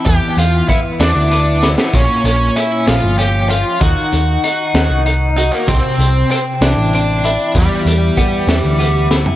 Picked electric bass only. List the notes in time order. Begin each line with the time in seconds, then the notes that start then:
0.06 E2
0.37 E2
1.00 E2
1.15 D2
1.94 A#1
2.24 A#1
2.87 A#1
3.03 G1
3.81 D#2
4.13 D#2
4.74 D#2
4.90 C2
5.68 C2
5.98 C2
6.61 C2
6.77 A1
7.55 E2
7.85 E2
8.47 E2
8.64 D2